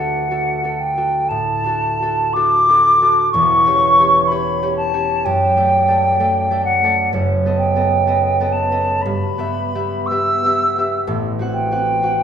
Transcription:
Already playing: harp D2 D4, flute F#5
0.00 harp F#4 A4
0.31 harp D4 F#4 A4
0.64 harp D4 F#4 A4
0.79 flute G5
0.97 harp D4 F#4 A4
1.29 harp A2, flute A5
1.64 harp D4 F#4
1.69 harp A4
2.02 harp D4 F#4 A4
2.33 harp D4 F#4 A4, flute D6
2.69 harp D4 F#4 A4
3.01 harp D4 F#4 A4
3.32 harp E1 E2, flute C#6
3.66 harp C#4 G4 C#5
3.99 harp C#4 G4 C#5
4.27 harp C#4 G4, flute B5
4.32 harp C#5
4.62 harp C#4 G4 C#5
4.77 flute A5
4.94 harp C#4 G4 C#5
5.25 harp F#2, flute G5
5.57 harp A3 A4 D5
5.88 harp A3 A4 D5
6.20 harp A3 A4 D5
6.51 harp A3 A4 D5
6.65 flute F#5
6.83 harp A3 A4 D5
7.13 harp F#1 F#2
7.46 harp B3 A4 D#5
7.58 flute G5
7.76 harp B3 A4 D#5
8.07 harp B3 A4 D#5
8.40 harp B3 A4 D#5
8.52 flute A5
8.72 harp B3 A4 D#5
9.02 harp G2, flute B5
9.38 harp B3 G4 E5
9.75 harp B3 G4 E5
10.06 flute E6
10.11 harp B3 G4 E5
10.45 harp B3 G4 E5
10.78 harp B3 G4 E5
11.07 harp A1 A2
11.39 harp C4 F#4 F#5
11.53 flute G5
11.71 harp C4 F#4 F#5
12.02 harp C4 F#4 F#5

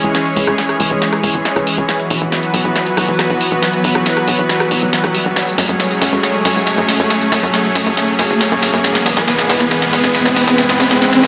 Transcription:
Already playing: supersaw synth E3 G#3 C#4 G#4 C#5, riser
0.04 analog synth bass C#2, closed hi-hat
0.15 snare, closed hi-hat
0.26 closed hi-hat
0.36 analog synth bass C#2, open hi-hat
0.47 analog synth bass C#2, cross-stick, closed hi-hat
0.58 snare, closed hi-hat
0.69 cross-stick, closed hi-hat
0.80 analog synth bass C#2, open hi-hat
0.91 analog synth bass C#2
1.02 snare, closed hi-hat
1.13 cross-stick, closed hi-hat
1.23 analog synth bass C#2, open hi-hat
1.34 analog synth bass G#1, closed hi-hat
1.45 snare, closed hi-hat
1.56 analog synth bass C#2, cross-stick, closed hi-hat
1.67 open hi-hat
1.78 analog synth bass C#2, closed hi-hat
1.89 supersaw synth F#3 B3 F#4 B4, snare, closed hi-hat
2.00 closed hi-hat
2.10 analog synth bass B1, open hi-hat
2.21 analog synth bass B1, closed hi-hat
2.32 snare, closed hi-hat
2.43 closed hi-hat
2.54 analog synth bass B1, open hi-hat
2.64 analog synth bass B1
2.76 snare, closed hi-hat
2.86 closed hi-hat
2.97 analog synth bass B1, cross-stick, open hi-hat
3.08 analog synth bass F#1, closed hi-hat
3.19 cross-stick, snare, closed hi-hat
3.30 analog synth bass B1, closed hi-hat
3.41 open hi-hat
3.51 analog synth bass B1, closed hi-hat
3.62 snare, closed hi-hat
3.73 closed hi-hat
3.84 analog synth bass B1, open hi-hat
3.95 analog synth bass B1, cross-stick, closed hi-hat
4.06 snare, closed hi-hat
4.17 cross-stick, closed hi-hat
4.28 analog synth bass B1, open hi-hat
4.39 analog synth bass B1, closed hi-hat
4.49 snare, closed hi-hat
4.60 cross-stick, closed hi-hat
4.71 analog synth bass B1, open hi-hat
4.82 analog synth bass F#1, closed hi-hat
4.93 snare, closed hi-hat
5.04 analog synth bass B1, cross-stick, closed hi-hat
5.15 open hi-hat
5.25 analog synth bass B1, closed hi-hat
5.36 supersaw synth A3 C#4 G#4 C#5, snare, closed hi-hat, tambourine
5.47 closed hi-hat, tambourine
5.58 analog synth bass F#2, snare, open hi-hat, tambourine
5.69 analog synth bass F#2, closed hi-hat, tambourine
5.80 snare, closed hi-hat, tambourine
5.91 closed hi-hat, tambourine
6.02 analog synth bass F#2, snare, open hi-hat, tambourine
6.12 analog synth bass F#2, closed hi-hat, tambourine
6.23 snare, closed hi-hat, tambourine
6.34 closed hi-hat
6.45 analog synth bass F#2, snare, open hi-hat, tambourine
6.56 analog synth bass F#1, closed hi-hat, tambourine
6.67 snare, closed hi-hat, tambourine
6.78 analog synth bass F#2, closed hi-hat
6.88 snare, open hi-hat, tambourine
6.99 analog synth bass F#2, closed hi-hat, tambourine
7.10 snare, closed hi-hat, tambourine
7.21 closed hi-hat, tambourine
7.32 analog synth bass F#2, snare, open hi-hat, tambourine
7.43 analog synth bass F#2, closed hi-hat, tambourine
7.54 snare, closed hi-hat, tambourine
7.65 closed hi-hat, tambourine
7.75 analog synth bass F#2, snare, open hi-hat, tambourine
7.86 analog synth bass F#2, closed hi-hat, tambourine
7.97 snare, closed hi-hat, tambourine
8.08 closed hi-hat
8.19 analog synth bass F#2, snare, open hi-hat, tambourine
8.30 analog synth bass F#1, closed hi-hat, tambourine
8.41 snare, closed hi-hat, tambourine
8.52 analog synth bass F#2, closed hi-hat
8.62 snare, open hi-hat, tambourine
8.73 analog synth bass F#2, closed hi-hat, tambourine
8.84 supersaw synth E3 G#3 B3 B4, snare, closed hi-hat, tambourine
8.95 snare, closed hi-hat, tambourine
9.06 analog synth bass E2, snare, open hi-hat, tambourine
9.17 analog synth bass E2, snare, closed hi-hat, tambourine
9.28 snare, closed hi-hat, tambourine
9.39 snare, closed hi-hat, tambourine
9.49 analog synth bass E2, snare, open hi-hat, tambourine
9.60 analog synth bass E2, snare, closed hi-hat, tambourine
9.71 snare, closed hi-hat, tambourine
9.82 snare, closed hi-hat
9.93 analog synth bass E2, snare, open hi-hat, tambourine
10.04 analog synth bass E1, snare, tambourine
10.15 snare, closed hi-hat, tambourine
10.25 analog synth bass E2, snare, closed hi-hat
10.36 snare, open hi-hat, tambourine
10.47 analog synth bass E2, snare, tambourine
10.58 snare, closed hi-hat, tambourine
10.69 snare, closed hi-hat, tambourine
10.80 analog synth bass E2, snare, open hi-hat, tambourine
10.91 analog synth bass E2, snare, closed hi-hat, tambourine
11.02 snare, closed hi-hat, tambourine
11.13 snare, closed hi-hat, tambourine
11.23 analog synth bass E2, snare, open hi-hat, tambourine

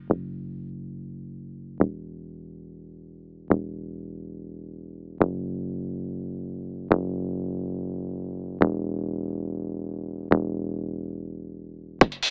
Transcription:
0.10 analog synth bass F#1
1.80 analog synth bass E1
3.50 analog synth bass E1
5.20 analog synth bass F#1
6.91 analog synth bass F#1
8.61 analog synth bass E1
10.31 analog synth bass E1
12.01 kick, closed hi-hat
12.12 closed hi-hat
12.23 open hi-hat

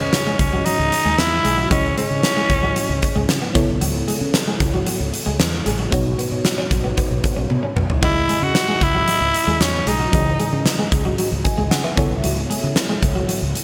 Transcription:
Already playing: fm electric piano C#3 E3 C#4 G#4 D#5, overdriven electric guitar G#3 C#4
0.00 fretless electric bass C#3, tenor saxophone C#4, muted clean electric guitar stroke
0.13 snare, closed hi-hat
0.27 clean electric guitar G#3
0.39 fretless electric bass C#2, tenor saxophone C#4, muted clean electric guitar stroke, kick, closed hi-hat
0.53 clean electric guitar F#3
0.66 clean electric guitar F#3, tenor saxophone D#4, closed hi-hat
0.79 fretless electric bass C#2
0.92 muted clean electric guitar stroke, closed hi-hat
1.05 fretless electric bass D#2, clean electric guitar G#3
1.18 fretless electric bass E2, tenor saxophone E4, muted clean electric guitar stroke, snare, closed hi-hat
1.44 fretless electric bass B1, clean electric guitar G#3, closed hi-hat
1.57 clean electric guitar F#3
1.70 fretless electric bass C#2, fm electric piano C#3 C#4 E4 G#4 D#5, clean electric guitar F#3, tenor saxophone C#4, kick, closed hi-hat
1.97 clean electric guitar G#3, tenor saxophone C#4, closed hi-hat
2.10 fretless electric bass C#3, muted clean electric guitar stroke
2.23 snare, closed hi-hat
2.37 clean electric guitar G#3
2.50 fretless electric bass C#2, muted clean electric guitar stroke, kick, closed hi-hat
2.63 clean electric guitar F#3
2.76 clean electric guitar F#3, closed hi-hat
2.89 fretless electric bass C#2
3.02 muted clean electric guitar stroke, kick, closed hi-hat
3.15 fretless electric bass C#2, clean electric guitar G#3
3.29 fretless electric bass C#3, muted clean electric guitar stroke, snare, closed hi-hat
3.42 clean electric guitar B3
3.54 fretless electric bass C#2, fm electric piano C#3 B3 E4 A4 C#5, clean electric guitar C#4, kick, closed hi-hat
3.68 fretless electric bass B1
3.81 fretless electric bass C#2, clean electric guitar F#3, closed hi-hat
4.08 clean electric guitar G#3, closed hi-hat
4.21 fretless electric bass C#3, muted clean electric guitar stroke
4.34 snare, closed hi-hat
4.47 clean electric guitar G#3
4.60 fretless electric bass C#2, muted clean electric guitar stroke, kick, closed hi-hat
4.74 clean electric guitar F#3
4.87 clean electric guitar F#3, closed hi-hat
5.00 fretless electric bass C#2
5.13 muted clean electric guitar stroke, closed hi-hat
5.26 fretless electric bass C#2, clean electric guitar G#3
5.40 fretless electric bass E2, muted clean electric guitar stroke, snare, closed hi-hat
5.66 fretless electric bass A1, clean electric guitar G#3, closed hi-hat
5.79 clean electric guitar F#3
5.91 fretless electric bass B1, fm electric piano B2 B3 D#4 F#4 C#5, clean electric guitar F#3, kick, closed hi-hat
6.19 clean electric guitar B3, closed hi-hat
6.31 fretless electric bass B2, muted clean electric guitar stroke
6.45 snare, closed hi-hat
6.58 clean electric guitar C#4
6.71 fretless electric bass B1, muted clean electric guitar stroke, kick, closed hi-hat
6.84 clean electric guitar B3
6.97 clean electric guitar B3, kick, closed hi-hat
7.10 fretless electric bass B1
7.24 muted clean electric guitar stroke, kick, closed hi-hat
7.36 fretless electric bass B1, clean electric guitar C#4
7.50 fretless electric bass B2, muted clean electric guitar stroke, high tom
7.63 clean electric guitar C#4
7.76 fretless electric bass B1, clean electric guitar B3, mid tom
7.89 fretless electric bass B1, floor tom
8.01 fretless electric bass C#2, fm electric piano C#3 C#4 E4 G#4 D#5, clean electric guitar F#3, tenor saxophone E4, kick, splash
8.29 clean electric guitar G#3, closed hi-hat
8.42 fretless electric bass C#3, tenor saxophone F#4, muted clean electric guitar stroke
8.55 snare, closed hi-hat
8.68 clean electric guitar G#3
8.81 fretless electric bass C#2, tenor saxophone E4, muted clean electric guitar stroke, kick, closed hi-hat
8.94 clean electric guitar F#3
9.08 clean electric guitar F#3, closed hi-hat
9.21 fretless electric bass C#2
9.34 muted clean electric guitar stroke, closed hi-hat
9.47 fretless electric bass D#2, clean electric guitar G#3
9.60 fretless electric bass E2, tenor saxophone C#4, muted clean electric guitar stroke, snare, closed hi-hat
9.86 fretless electric bass B1, clean electric guitar G#3, tenor saxophone D#4, closed hi-hat
10.00 clean electric guitar F#3
10.12 fretless electric bass C#2, fm electric piano C#3 E3 C#4 G#4 D#5, clean electric guitar F#3, kick, closed hi-hat
10.40 clean electric guitar G#3, closed hi-hat
10.53 fretless electric bass C#3, muted clean electric guitar stroke
10.66 snare, closed hi-hat
10.79 clean electric guitar G#3
10.92 fretless electric bass C#2, muted clean electric guitar stroke, kick, closed hi-hat
11.05 clean electric guitar F#3
11.18 clean electric guitar F#3, closed hi-hat
11.32 fretless electric bass C#2
11.44 fm electric piano G#5, muted clean electric guitar stroke, kick, closed hi-hat
11.58 fretless electric bass C#2, clean electric guitar G#3
11.71 fretless electric bass C#3, fm electric piano F#5, muted clean electric guitar stroke, snare, closed hi-hat
11.84 clean electric guitar B3, fm electric piano E5
11.96 fretless electric bass C#2, fm electric piano C#3 B3 E4 A4 C#5, clean electric guitar C#4, kick, closed hi-hat
12.11 fretless electric bass B1
12.24 fretless electric bass C#2, clean electric guitar F#3, closed hi-hat
12.50 clean electric guitar G#3, closed hi-hat
12.63 fretless electric bass C#3, muted clean electric guitar stroke
12.76 snare, closed hi-hat
12.89 clean electric guitar G#3
13.02 fretless electric bass C#2, muted clean electric guitar stroke, kick, closed hi-hat
13.15 clean electric guitar F#3
13.29 clean electric guitar F#3, closed hi-hat
13.42 fretless electric bass C#2
13.55 muted clean electric guitar stroke, closed hi-hat

